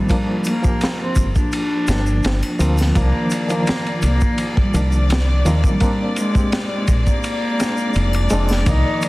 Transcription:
0.00 0.12 D#3 medium
0.00 0.10 F3 medium
0.00 0.41 G3 medium
0.00 0.11 A#3 medium
0.00 0.12 C4 loud
0.00 0.12 D4 medium
0.09 0.60 F3 medium
0.09 0.60 A#3 medium
0.09 0.61 D4 medium
0.09 kick loud
0.09 ride medium
0.09 shaker soft
0.44 0.95 A#3 loud
0.44 ride medium
0.44 triangle medium
0.44 shaker loud
0.62 1.84 F3 medium
0.62 1.85 A#3 medium
0.62 kick loud
0.62 shaker medium
0.67 1.86 G4 medium
0.81 snare loud
0.81 ride medium
0.81 shaker soft
1.02 1.33 C4 medium
1.16 1.33 G1 medium
1.16 kick medium
1.16 ride medium
1.16 shaker loud
1.35 2.82 D4 loud
1.35 kick medium
1.35 shaker soft
1.52 ride loud
1.52 shaker soft
1.88 2.20 G1 medium
1.88 2.55 F3 medium
1.88 2.56 A#3 medium
1.88 2.56 D4 medium
1.88 snare medium
1.88 ride medium
1.88 shaker loud
2.06 shaker medium
2.23 2.40 G1 medium
2.23 snare loud
2.23 ride medium
2.23 shaker soft
2.43 ride soft
2.43 triangle medium
2.59 2.91 D2 medium
2.59 2.91 F3 medium
2.59 2.92 A#3 medium
2.59 2.92 C4 loud
2.59 ride medium
2.59 shaker medium
2.77 snare soft
2.77 triangle medium
2.77 shaker medium
2.95 3.12 C2 loud
2.95 3.45 D#3 medium
2.95 3.46 F3 medium
2.95 3.46 A#3 medium
2.95 3.45 A#3 medium
2.95 3.46 D4 medium
2.95 9.09 D5 medium
2.95 kick medium
2.95 ride medium
2.95 shaker soft
3.30 ride medium
3.30 shaker loud
3.49 4.70 D#3 medium
3.49 4.71 F3 medium
3.49 4.71 A#3 medium
3.49 3.98 A#3 medium
3.49 ride soft
3.49 shaker medium
3.54 4.72 F4 medium
3.66 snare loud
3.66 ride medium
3.66 shaker soft
3.86 ride soft
4.02 4.19 C2 medium
4.02 4.52 A#3 loud
4.02 ride medium
4.02 shaker medium
4.21 kick medium
4.21 shaker medium
4.38 ride medium
4.38 shaker soft
4.57 5.05 G3 loud
4.57 kick medium
4.74 5.42 C2 medium
4.74 5.41 D#3 medium
4.74 5.41 F3 medium
4.74 5.42 A#3 medium
4.74 5.42 D4 medium
4.74 ride medium
4.74 shaker medium
4.92 shaker medium
5.10 snare loud
5.10 ride medium
5.10 shaker soft
5.45 5.62 D#2 medium
5.45 5.77 D#3 loud
5.45 5.77 F3 medium
5.45 5.77 A#3 medium
5.45 5.78 C4 loud
5.45 ride medium
5.45 shaker medium
5.64 6.13 G3 loud
5.64 kick medium
5.64 shaker medium
5.80 6.31 A#3 medium
5.80 6.32 C4 medium
5.80 6.32 D4 medium
5.80 kick loud
5.80 ride medium
5.80 shaker soft
6.16 6.66 G#3 medium
6.16 ride medium
6.16 shaker medium
6.34 7.56 G#3 medium
6.34 7.57 C4 medium
6.34 kick medium
6.34 shaker medium
6.39 7.58 G4 medium
6.52 snare loud
6.52 ride medium
6.52 shaker soft
6.73 7.04 G#3 medium
6.88 7.05 A#1 medium
6.88 kick medium
6.88 ride medium
6.88 shaker medium
7.07 8.54 A#3 loud
7.07 kick medium
7.07 shaker soft
7.23 ride medium
7.23 shaker soft
7.59 8.27 G#3 medium
7.59 8.27 C4 medium
7.59 8.28 D4 medium
7.59 snare medium
7.59 ride medium
7.59 shaker medium
7.77 shaker soft
7.94 8.27 F1 medium
7.94 ride medium
7.94 shaker soft
8.13 ride soft
8.13 triangle medium
8.30 8.63 F1 medium
8.30 8.62 G#3 medium
8.30 8.63 C4 medium
8.30 8.64 D4 loud
8.30 ride medium
8.30 shaker medium
8.49 snare soft
8.49 triangle medium
8.49 shaker medium
8.66 8.83 C2 loud
8.66 9.09 D#3 medium
8.66 9.09 F3 medium
8.66 9.09 A#3 medium
8.66 9.09 D#4 loud
8.66 9.09 D5 medium
8.66 kick loud
8.66 ride medium
8.66 shaker soft
9.02 ride medium
9.02 shaker medium

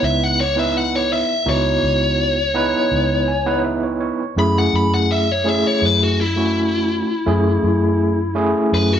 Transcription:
0.00 1.21 C#2 medium
0.00 0.41 B3 medium
0.00 0.41 D#4 medium
0.00 0.41 E4 medium
0.00 0.41 B4 medium
0.04 0.24 E5 medium
0.24 0.39 F#5 medium
0.41 0.59 C#5 medium
0.56 1.32 B3 medium
0.56 1.32 D#4 medium
0.56 1.32 E4 medium
0.56 1.32 B4 medium
0.56 0.75 E5 medium
0.77 0.94 F#5 medium
0.95 1.11 C#5 medium
1.13 1.47 E5 medium
1.46 1.76 C#2 medium
1.46 2.37 B3 medium
1.46 2.37 D#4 medium
1.46 2.37 E4 medium
1.46 2.38 F#4 medium
1.46 3.62 C#5 medium
1.83 2.72 C#2 medium
2.54 3.30 B3 loud
2.54 3.30 D#4 medium
2.54 3.31 E4 medium
2.54 3.31 B4 loud
2.91 4.11 C#2 medium
3.28 3.46 G#5 medium
3.46 4.22 B3 medium
3.46 4.22 D#4 medium
3.46 4.22 E4 medium
3.46 4.22 B4 loud
3.46 3.63 F#5 medium
3.64 3.82 E5 medium
3.83 3.99 C#5 medium
4.00 4.34 C#5 medium
4.36 4.66 F#2 medium
4.36 5.28 A3 medium
4.36 5.28 C#4 medium
4.36 5.28 E4 medium
4.36 5.28 G#4 medium
4.36 4.56 B5 medium
4.58 4.74 F#5 medium
4.73 5.62 F#2 medium
4.73 4.93 B5 medium
4.94 5.10 F#5 medium
5.12 5.32 E5 medium
5.32 5.49 C#5 medium
5.44 6.20 A3 medium
5.44 6.20 C#4 medium
5.44 6.21 E4 medium
5.44 6.21 G#4 medium
5.49 5.67 E5 medium
5.67 5.85 C#5 medium
5.82 7.01 F#2 medium
5.82 6.02 B4 medium
6.03 6.19 F#4 medium
6.21 8.33 E4 medium
6.36 7.11 A3 medium
6.36 7.12 C#4 medium
6.36 7.12 E4 medium
6.36 7.12 F#4 medium
7.26 7.57 F#2 medium
7.26 8.17 A3 medium
7.26 8.18 C#4 medium
7.26 8.18 E4 medium
7.26 8.18 G#4 loud
7.63 8.53 F#2 medium
8.35 9.00 A3 loud
8.35 9.00 C#4 medium
8.35 9.00 E4 medium
8.35 9.00 G#4 loud
8.72 9.00 F#2 medium
8.72 8.92 B4 medium
8.93 9.00 F#4 medium

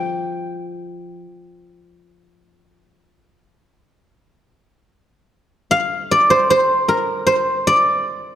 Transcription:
0.00 1.24 F3 soft
0.00 0.32 A#4 medium
0.00 0.58 C5 medium
0.00 0.62 D5 medium
0.00 0.64 F5 medium
0.00 3.61 G5 medium
5.71 7.38 F5 medium
6.11 7.67 D5 medium
6.30 6.50 C5 medium
6.50 7.26 C5 medium
6.88 8.35 A#4 medium
7.27 8.35 C5 medium
7.67 8.35 D5 medium

